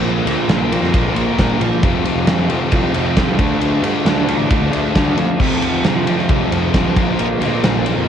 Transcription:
Already playing: picked electric bass A#1, distorted electric guitar A#2 F3 A#3 C4, string section C4 F4 A#4 F5
0.04 distorted electric guitar A#2 F3 A#3
0.26 picked electric bass D2, distorted electric guitar A#2 F3 A#3, ride
0.48 picked electric bass A#1, distorted electric guitar A#2 F3 A#3 C4, snare, ride
0.71 distorted electric guitar A#2 F3 A#3, ride
0.82 picked electric bass F2, snare
0.94 distorted electric guitar A#2 F3 A#3, kick, ride
1.05 picked electric bass A#1
1.15 distorted electric guitar A#2 F3 A#3, ride
1.38 picked electric bass A#1, distorted electric guitar A#2 F3 A#3, kick, snare, ride
1.60 picked electric bass A#1, distorted electric guitar A#2 F3 A#3, ride
1.83 picked electric bass F1, distorted electric guitar F2 C3 F3 A3 C4, string section C4 G4 A4, kick, ride
2.05 distorted electric guitar F2 C3 F3, ride
2.15 picked electric bass F1
2.26 distorted electric guitar F2 C3 F3, snare, ride
2.38 picked electric bass F2
2.49 distorted electric guitar F2 C3 F3 A3 C4, ride
2.72 picked electric bass C2, distorted electric guitar F2 C3 F3, kick, ride
2.94 picked electric bass F1, distorted electric guitar F2 C3 F3, ride
3.17 distorted electric guitar F2 C3 F3, kick, snare, ride
3.28 picked electric bass C2
3.38 picked electric bass D2, distorted electric guitar D3 F3 A3 D4, string section D4 F4, kick, ride
3.61 distorted electric guitar D3 A3 D4, ride
3.83 picked electric bass G2, distorted electric guitar D3 A3 D4, ride
4.05 picked electric bass D2, distorted electric guitar D3 F3 A3 D4, snare, ride
4.28 distorted electric guitar D3 A3 D4, ride
4.38 picked electric bass A1
4.50 distorted electric guitar D3 A3 D4, kick, ride
4.61 picked electric bass D2
4.71 distorted electric guitar D3 A3 D4, ride
4.94 picked electric bass D2, distorted electric guitar D3 A3 D4, kick, snare, ride
5.16 picked electric bass F2, distorted electric guitar D3 A3 D4, ride
5.39 distorted electric guitar F2 C3 F3 A3, picked electric bass F2, string section C4 G4 A4, kick, crash
5.43 distorted electric guitar C4
5.62 distorted electric guitar F2 C3 F3, ride
5.73 picked electric bass F2
5.84 distorted electric guitar F2 C3 F3, snare, ride
5.96 picked electric bass F3
6.07 distorted electric guitar F2 C3 F3 A3 C4, ride
6.18 snare
6.29 picked electric bass C2, distorted electric guitar F2 C3 F3, kick, ride
6.51 picked electric bass F2, distorted electric guitar F2 C3 F3, ride
6.74 distorted electric guitar F2 C3 F3, kick, snare, ride
6.84 picked electric bass C2
6.96 picked electric bass A#1, distorted electric guitar A#2 F3 A#3 C4, string section F4 A#4 F5, kick, ride
7.19 distorted electric guitar A#2 F3 A#3, ride
7.41 picked electric bass D2, distorted electric guitar A#2 F3 A#3, ride
7.64 picked electric bass A#1, distorted electric guitar A#2 F3 A#3 C4, snare, ride
7.86 distorted electric guitar A#2 F3 A#3, ride
7.96 picked electric bass F2

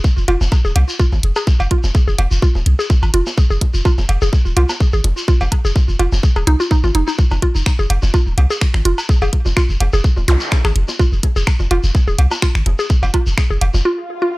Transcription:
0.04 kick, low bongo, shekere
0.17 sub bass F1, shekere
0.28 sub bass F1, synth arpeggio sound F4, closed hi-hat, cowbell
0.41 sub bass F1, low bongo, shekere
0.52 kick, cowbell, shekere
0.65 sub bass D#1, synth arpeggio sound G#4, shekere
0.76 sub bass C2, closed hi-hat, cowbell, low bongo
0.89 shekere
0.99 synth arpeggio sound F4, kick, shekere
1.12 sub bass G#1, low bongo, shekere
1.23 sub bass F1, closed hi-hat
1.36 synth arpeggio sound G#4, cowbell, shekere
1.47 kick, low bongo, shekere
1.60 sub bass F1, cowbell, shekere
1.71 synth arpeggio sound F4, kick, closed hi-hat
1.84 sub bass F1, low bongo, shekere
1.95 kick, shekere
2.08 sub bass F1, synth arpeggio sound G#4, shekere
2.18 sub bass F1, closed hi-hat, cowbell, low bongo
2.31 sub bass F1, shekere
2.42 synth arpeggio sound F4, kick, shekere
2.55 sub bass D#1, low bongo, shekere
2.66 sub bass C2, closed hi-hat
2.79 synth arpeggio sound G#4, shekere
2.90 kick, low bongo, shekere
3.02 sub bass G#1, cowbell, shekere
3.14 sub bass F1, synth arpeggio sound F4, closed hi-hat
3.26 low bongo, shekere
3.38 kick, shekere
3.50 sub bass F1, synth arpeggio sound G#4, shekere
3.61 kick, closed hi-hat, low bongo
3.74 sub bass F1, shekere
3.85 synth arpeggio sound F4, kick, cowbell, shekere
3.98 sub bass F1, low bongo, shekere
4.09 sub bass F1, closed hi-hat, cowbell
4.22 sub bass F1, synth arpeggio sound G#4, shekere
4.33 kick, low bongo, shekere
4.46 sub bass D#1, shekere
4.57 sub bass C2, synth arpeggio sound F4, closed hi-hat, cowbell
4.69 cowbell, low bongo, shekere
4.80 kick, shekere
4.93 sub bass G#1, synth arpeggio sound G#4, shekere
5.04 sub bass F1, closed hi-hat, low bongo
5.17 shekere
5.28 synth arpeggio sound F4, kick, shekere
5.40 sub bass F1, cowbell, low bongo, shekere
5.52 kick, closed hi-hat, cowbell
5.65 sub bass F1, synth arpeggio sound G#4, shekere
5.76 kick, low bongo, shekere
5.88 sub bass F1, shekere
5.99 sub bass F1, synth arpeggio sound F4, closed hi-hat, cowbell
6.12 sub bass F1, low bongo, shekere
6.23 kick, shekere
6.36 sub bass D#1, synth arpeggio sound G#4, cowbell, shekere
6.47 sub bass C2, synth arpeggio sound D#4, closed hi-hat, low bongo
6.60 synth arpeggio sound F4, shekere
6.71 synth arpeggio sound D#4, kick, shekere
6.84 sub bass G#1, synth arpeggio sound F4, low bongo, shekere
6.95 sub bass F1, synth arpeggio sound D#4, closed hi-hat
7.08 synth arpeggio sound D#4, shekere
7.18 kick, shekere
7.31 sub bass F1, cowbell, low bongo, shekere
7.42 synth arpeggio sound F4, kick, closed hi-hat
7.55 sub bass F1, shekere
7.66 finger snap, kick, low bongo, shekere
7.79 sub bass F1, synth arpeggio sound G#4, shekere
7.90 sub bass F1, closed hi-hat, cowbell
8.02 sub bass F1, low bongo, shekere
8.14 synth arpeggio sound F4, kick, cowbell, shekere
8.26 sub bass D#1, shekere
8.38 sub bass C2, closed hi-hat, cowbell, low bongo
8.50 synth arpeggio sound G#4, shekere
8.61 finger snap, kick, shekere
8.74 sub bass G#1, finger snap, low bongo, shekere
8.85 sub bass F1, synth arpeggio sound F4, closed hi-hat
8.98 cowbell, shekere
9.09 kick, low bongo, shekere
9.22 sub bass F1, synth arpeggio sound G#4, cowbell, shekere
9.33 kick, closed hi-hat
9.46 sub bass F1, low bongo, shekere
9.57 synth arpeggio sound F4, finger snap, kick, shekere
9.69 sub bass F1, shekere
9.80 sub bass F1, closed hi-hat, cowbell, low bongo
9.93 sub bass F1, synth arpeggio sound G#4, shekere
10.04 kick, shekere
10.17 sub bass D#1, low bongo, shekere
10.28 sub bass C2, synth arpeggio sound F4, closed hi-hat, zap
10.40 shekere
10.51 finger snap, kick, low bongo, shekere
10.65 sub bass G#1, synth arpeggio sound G#4, finger snap, cowbell, shekere
10.76 sub bass F1, closed hi-hat
10.88 low bongo, shekere
10.99 synth arpeggio sound F4, kick, shekere
11.12 sub bass F1, shekere
11.23 kick, closed hi-hat, low bongo
11.36 sub bass F1, synth arpeggio sound G#4, shekere
11.47 finger snap, kick, cowbell, shekere
11.59 sub bass F1, low bongo, shekere
11.71 sub bass F1, synth arpeggio sound F4, closed hi-hat, cowbell
11.84 sub bass F1, shekere
11.95 kick, low bongo, shekere
12.08 sub bass D#1, synth arpeggio sound G#4, shekere
12.18 sub bass C2, closed hi-hat, cowbell
12.31 cowbell, low bongo, shekere
12.42 synth arpeggio sound F4, finger snap, kick, shekere
12.55 sub bass G#1, finger snap, shekere
12.66 sub bass F1, closed hi-hat, low bongo
12.79 synth arpeggio sound G#4, shekere
12.89 kick, shekere
13.03 sub bass F1, cowbell, low bongo, shekere
13.14 synth arpeggio sound F4, kick, closed hi-hat, cowbell
13.27 sub bass F1, shekere
13.38 finger snap, kick, low bongo, shekere
13.50 sub bass F1, synth arpeggio sound G#4, shekere
13.61 sub bass F1, closed hi-hat, cowbell
13.74 sub bass F1, low bongo, shekere
13.85 synth arpeggio sound F4, swell
14.22 synth arpeggio sound F4

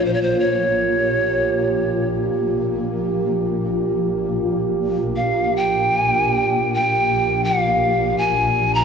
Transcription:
Already playing: ambient pad A#1 A#2, glass harmonica F4
0.05 pan flute C5
0.14 pan flute C#5
0.22 pan flute C5
0.40 pan flute C#5
0.70 ambient pad A#1 A#2
0.86 glass harmonica G4
5.16 pan flute F5
5.56 pan flute G5
6.74 pan flute G5
7.44 pan flute F5
8.18 pan flute G#5
8.75 pan flute A#5

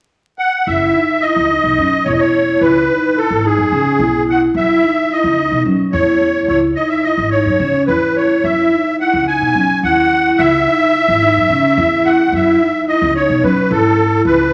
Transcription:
0.39 accordion F#5
0.67 upright bass F#1, vibraphone E4, accordion E5
0.95 vibraphone D#4
1.21 vibraphone E4, accordion D#5
1.36 upright bass C#2
1.51 vibraphone D#4
1.64 upright bass B1
1.78 upright bass F#2, vibraphone C#4
2.05 upright bass E1, vibraphone E4, accordion C#5
2.13 accordion D#5
2.19 accordion C#5
2.34 vibraphone E4
2.61 upright bass C#2, vibraphone E4, accordion B4
2.90 vibraphone D#4
3.17 vibraphone E4, accordion A4
3.30 upright bass G#1
3.44 vibraphone D#4, accordion G#4
3.58 upright bass F#2
3.72 upright bass C#3, vibraphone C#4
3.99 upright bass B1, vibraphone E4
4.27 vibraphone E4, accordion F#5
4.54 upright bass F#2, vibraphone E4, accordion E5
4.83 vibraphone D#4
5.11 vibraphone E4, accordion D#5
5.24 upright bass C#2
5.38 vibraphone D#4
5.52 upright bass B2
5.65 upright bass F#3, vibraphone C#4
5.92 upright bass E2, vibraphone E4, accordion C#5
6.22 vibraphone E4
6.48 upright bass C#2, vibraphone E4, accordion C#5
6.76 vibraphone D#4, accordion D#5
6.89 accordion E5
7.03 vibraphone E4, accordion D#5
7.18 upright bass G#1
7.31 vibraphone D#4, accordion C#5
7.46 upright bass F#2
7.59 upright bass C#3, vibraphone C#4
7.87 upright bass E2, vibraphone E4, accordion B4
8.16 vibraphone E4, accordion C#5
8.44 upright bass F#2, vibraphone E4, accordion E5
8.73 vibraphone D#4
9.00 vibraphone E4, accordion F#5
9.13 upright bass C#2
9.27 vibraphone D#4, accordion G#5
9.41 upright bass B2
9.55 upright bass F#3, vibraphone C#4
9.83 upright bass D#2, vibraphone E4, accordion F#5
10.13 vibraphone E4
10.38 upright bass C#2, vibraphone E4, accordion E5
10.68 vibraphone D#4
10.95 vibraphone E4
11.08 upright bass G#1
11.23 vibraphone D#4
11.37 upright bass F#2
11.50 upright bass C#3, vibraphone C#4
11.77 upright bass E2, vibraphone E4
12.05 vibraphone E4, accordion F#5
12.32 upright bass F#2, vibraphone E4, accordion E5
12.61 vibraphone D#4
12.88 vibraphone E4, accordion D#5
13.02 upright bass C#2
13.16 vibraphone D#4, accordion C#5
13.29 upright bass B2
13.43 upright bass F#3, vibraphone C#4, accordion B4
13.71 upright bass G#2, vibraphone E4, accordion A4
14.25 upright bass C#2, vibraphone E4, accordion B4

